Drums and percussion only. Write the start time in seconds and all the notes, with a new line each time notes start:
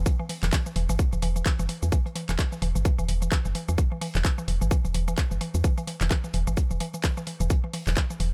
0.06 kick, closed hi-hat, shaker
0.29 open hi-hat
0.43 clap, shaker
0.53 kick, snare, clap, closed hi-hat, shaker
0.66 shaker
0.76 closed hi-hat, open hi-hat
0.89 shaker
0.99 kick, closed hi-hat, shaker
1.13 shaker
1.22 closed hi-hat, open hi-hat
1.36 shaker
1.45 kick, snare, clap, closed hi-hat, shaker
1.59 shaker
1.69 closed hi-hat, open hi-hat
1.83 closed hi-hat, shaker
1.92 kick, closed hi-hat, shaker
2.06 closed hi-hat
2.16 snare, closed hi-hat, open hi-hat
2.29 snare, clap, shaker
2.39 kick, snare, clap, closed hi-hat, shaker
2.52 snare, shaker
2.62 closed hi-hat, open hi-hat
2.76 shaker
2.85 kick, closed hi-hat, shaker
2.99 shaker
3.09 closed hi-hat, open hi-hat
3.22 shaker
3.32 kick, snare, clap, closed hi-hat, shaker
3.45 snare, shaker
3.55 closed hi-hat, open hi-hat
3.68 shaker
3.78 kick, closed hi-hat, shaker
4.01 open hi-hat
4.15 clap, shaker
4.24 kick, snare, clap, closed hi-hat, shaker
4.38 shaker
4.48 closed hi-hat, open hi-hat
4.62 shaker
4.71 kick, closed hi-hat, shaker
4.85 shaker
4.94 closed hi-hat, open hi-hat
5.08 shaker
5.17 kick, snare, clap, closed hi-hat, shaker
5.31 shaker
5.41 closed hi-hat, open hi-hat
5.54 closed hi-hat, shaker
5.64 kick, closed hi-hat, shaker
5.78 closed hi-hat, shaker
5.87 snare, closed hi-hat, open hi-hat
6.01 snare, clap, shaker
6.10 kick, snare, clap, closed hi-hat, shaker
6.24 snare, shaker
6.33 closed hi-hat, open hi-hat
6.47 shaker
6.57 kick, closed hi-hat, shaker
6.71 shaker
6.80 closed hi-hat, open hi-hat
6.94 shaker
7.04 kick, snare, clap, closed hi-hat, shaker
7.17 snare, shaker
7.27 closed hi-hat, open hi-hat
7.40 shaker
7.50 kick, closed hi-hat, shaker
7.73 open hi-hat
7.87 clap, shaker
7.96 kick, snare, clap, closed hi-hat, shaker
8.10 shaker
8.20 closed hi-hat, open hi-hat